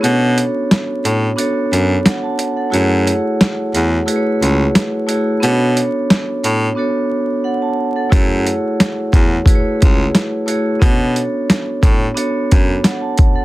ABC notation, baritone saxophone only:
X:1
M:4/4
L:1/16
Q:"Swing 16ths" 1/4=89
K:Bdor
V:1 name="Baritone saxophone" clef=bass
B,,3 z3 A,,2 z2 F,,2 z4 | F,,3 z3 E,,2 z2 C,,2 z4 | B,,3 z3 A,,2 z8 | F,,3 z3 E,,2 z2 C,,2 z4 |
B,,3 z3 A,,2 z2 F,,2 z4 |]